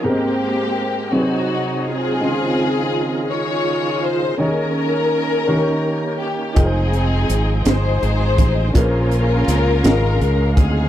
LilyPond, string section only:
\new Staff \with { instrumentName = "String section" } { \time 6/8 \key aes \major \tempo 4. = 55 << { g'4. ges'4 aes'8~ | aes'4. des''4 c''8 | bes'2~ bes'8 g'8 | aes'4. c''4. |
bes'2~ bes'8 aes'8 | } \\ { <bes c'>4. ees'4 <c' f'>8~ | <c' f'>4. <f' aes'>4. | des'2~ des'8 r8 | <c' ees'>4. <ees' aes'>4. |
<des' f'>2~ <des' f'>8 <c' ees'>8 | } >> }